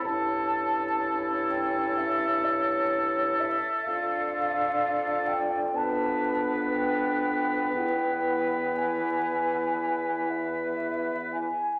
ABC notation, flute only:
X:1
M:4/4
L:1/8
Q:1/4=62
K:Ephr
V:1 name="Flute"
a3 g e ^c2 e | f3 g a z g2 | g2 ^g3 e2 g |]